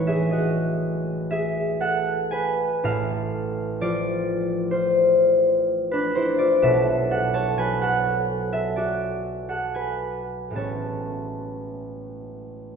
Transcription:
harp
Already playing: A1 A2 E3 D#4 E4 B4 C#5
0.07 G#4 E5
0.31 F#4 D#5
1.31 G#4 E5
1.81 A4 F#5
2.31 B4 G#5
2.84 A1 A2 A4 F5
3.81 F3 F4 D5
4.71 F4 C5
5.91 D4 B4
6.15 E4 C5
6.38 F4 D5
6.62 B1 B2 A4 E5
7.11 A4 F#5
7.34 C#5 A5
7.57 F#3 B4 G#5
7.82 A4 F#5
8.53 A4 E5
8.76 F#4 D5
9.49 A4 F#5
9.74 B4 G#5
10.51 A2 G#3 B3
10.55 A1 C#4 C#5 A5

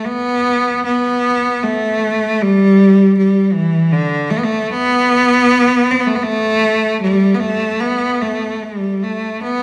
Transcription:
cello
0.05 B3
0.85 B3
1.63 A3
2.42 G3
3.17 G3
3.53 E3
3.92 D3
4.30 A3
4.38 B3
4.44 A3
4.70 B3
5.91 C4
6.00 B3
6.06 A3
6.15 B3
6.22 A3
7.02 G3
7.34 B3
7.40 A3
7.80 B3
8.22 A3
8.62 G#3
8.79 G3
9.03 A3
9.42 B3

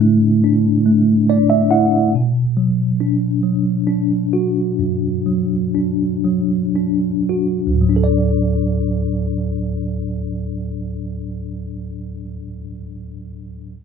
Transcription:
tine electric piano
Already playing: A2 D4 E4
0.00 A3
0.44 D4
0.86 A3
1.30 D4 D5
1.50 E5
1.71 E4 F#5
2.15 B2
2.57 F#3
3.00 D4
3.43 F#3
3.87 D4
4.33 F#4
4.79 F#2
5.26 F#3
5.74 D4
6.24 F#3
6.76 D4
7.29 F#4
7.67 D2
7.74 A2
7.81 F#3
7.89 D4
7.96 A4
8.04 D5

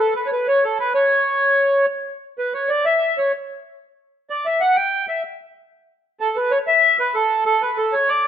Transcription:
accordion
0.00 A4
0.16 B4
0.26 C#5
0.32 B4
0.48 C#5
0.65 A4
0.80 B4
0.94 C#5
2.38 B4
2.54 C#5
2.69 D5
2.85 E5
3.18 C#5
4.30 D5
4.45 E5
4.60 F#5
4.76 G5
5.08 E5
6.20 A4
6.36 B4
6.51 C#5
6.67 E5
7.00 B4
7.15 A4
7.46 A4
7.62 B4
7.78 A4
7.93 C#5
8.09 D5

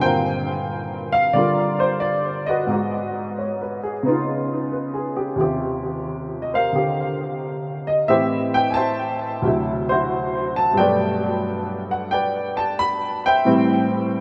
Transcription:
upright piano
Already playing: G2 D3
0.01 A#2 C4 A#4 C5 G5
0.06 F5
1.12 F5
1.33 D3 G3 F4 A#4 D5
1.80 C5
2.00 D5
2.46 F#4 B4 D#5
2.67 G#2 G#3 B3
2.72 F#4
3.39 C#5
3.61 B4
3.83 G#4
4.03 C#3 B3 D#4
4.08 F4
4.72 B4
4.94 G#4
5.17 G4
5.36 D#2 C3 F4
5.41 G4
6.42 D#5
6.54 A#4 C5 F5
6.72 D3 G4
7.87 D#5
8.08 A2 E3 C4 G4 C5 E5
8.54 G5
8.70 G#5 A5
8.76 C5 E5
9.42 D2 C3 F#3
9.47 E4
9.89 E4 F#4 C5
10.56 A5
10.73 G2 F#3
10.77 A3 B4 D5 G5
10.84 B2
11.91 F#5
12.11 B4 D5 G5
12.57 A5
12.79 B5
13.26 C5 E5 G5
13.45 A2 E3 G3 C4

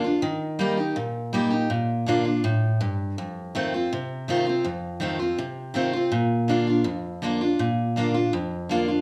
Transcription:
steel-string acoustic guitar
Already playing: F2
0.04 D4 F4
0.22 D#3
0.59 G3 A#3 D#4 G4
0.77 D#4 G4
0.96 A#2
1.33 G3 A#3 D#4 G4
1.50 D#4 G4
1.70 A#2
2.06 D3 A#3 D4 F4
2.25 D4 F4
2.44 A2
2.81 G2
3.18 F2
3.55 D#3 A3 C4 F4
3.74 C4 F4
3.93 C3
4.28 D#3 A3 C4 F4
4.47 C4 F4
4.65 F2
5.00 D#3 A3 C4 F4
5.19 C4 F4
5.38 C3
5.74 D#3 A3 C4 F4
5.93 C4 F4
6.12 A#2
6.48 D3 A#3 D4 F4
6.67 D4 F4
6.84 F2
7.22 D3 A#3 D4 F4
7.41 D4 F4
7.59 A#2
7.96 D3 A#3 D4 F4
8.14 D4 F4
8.33 F2
8.69 D3 A#3 D4 F4
8.88 D4 F4

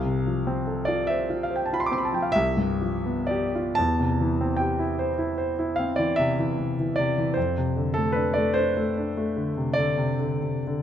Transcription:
grand piano
Already playing: C2 F5
0.05 C3
0.27 F3
0.47 C4
0.67 A4
0.85 F4 D5
1.07 C5 E5
1.30 F4
1.43 F5
1.51 C5
1.56 G5
1.66 A5
1.73 F4 B5
1.80 C6
1.86 D6
1.92 C4 C6
1.98 B5
2.05 A5
2.13 F3 G5
2.22 F5
2.32 C2 E5
2.57 G2
2.81 F3
3.06 B3
3.27 D5
3.31 G4
3.55 F4
3.75 E2 A5
4.00 C3
4.21 E3
4.41 C4
4.57 G4 G5
4.79 E4
4.99 C5
5.18 E4
5.38 C5
5.59 E4
5.76 C4 F5
5.96 E3 D5
6.16 C3 E5
6.39 E3
6.59 C3
6.80 E3
6.96 C3 D5
7.18 E3
7.34 F2 C5
7.58 C3
7.76 D3
7.94 A3 A4
8.12 D4 B4
8.34 A3 D5
8.54 D4 C5
8.77 A3
8.97 D4
9.17 A3
9.37 D3
9.57 C3
9.73 D3 D5
9.98 C3
10.19 D3
10.43 C3
10.67 D3

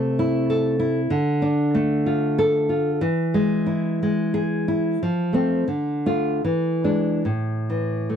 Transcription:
nylon-string guitar
Already playing: C3 A3 C4
0.19 E4
0.50 A4
0.79 E4
1.10 D3
1.42 D4
1.75 A3
2.06 F4
2.39 A4
2.69 F4
3.01 E3
3.34 G#3
3.66 E4
4.03 G#3
4.34 G#4
4.68 E4
5.03 F3
5.33 A3 C4
5.68 D3
6.06 A3 F4
6.44 E3
6.84 G#3 D4
7.25 A2
7.70 E3
8.09 A3

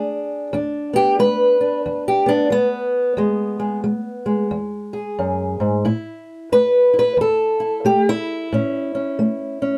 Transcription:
steel-string acoustic guitar
Already playing: G#3 B3 D4 G#4
0.53 E2 D4
0.93 B3 G4
1.19 G#3 B4
1.61 D4
1.86 E2
2.08 G4
2.26 B3 D4
2.50 G#3 B3
3.17 E2 G#3
3.60 G#3
3.84 G#3
4.26 G#3
4.51 E2
4.93 G#4
5.19 F#2
5.60 G#2
5.85 A2 E4
6.52 A3 B4
6.93 E4
6.99 B4
7.17 E2
7.21 A4
7.60 E4
7.85 A3 G4
8.09 E4
8.53 A2 C#4
8.95 C#4
9.19 A3
9.62 C#4

